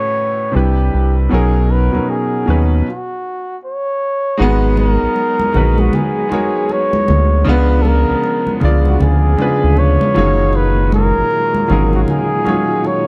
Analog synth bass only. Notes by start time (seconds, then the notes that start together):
0.56 C2
0.94 C2
1.33 B1
1.95 D#2
2.48 D#2
4.40 G#1
5.03 A#1
5.56 A#1
7.10 D2
7.48 C#2
8.10 C#2
8.63 C#2
9.02 D2
9.64 D2
10.17 F#1
11.18 G#1
11.70 G#1